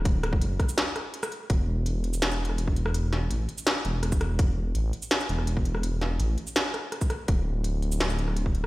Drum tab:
HH |x---x---x---x---x---x---x---x---|x-------x---x---x----x--x---x---|x-------x---x---x---x---x---x---|x-------x---x---x---x---x---x---|
SH |--------------x-----------x-----|--------------x---x-------------|--------------x-----------x-----|--------------x---x-------------|
SD |----r-------r---o---r-----r-----|----------------o-----r-------r-|----o-----------o-------r---r---|----------------o-----r-------r-|
BD |o-----o-----o-------------------|o-------------------------o-----|--------------------------o-----|o-------------------------o-----|

HH |x-------x---x---x---x---x---x---|x-------x---x---x---x---x---x---|
SH |--------------x-----------x-----|--------------x---x-------------|
SD |----o-----------o---r---r---r---|----------------o-----r---------|
BD |--------------------------o-----|o-------------------------o-----|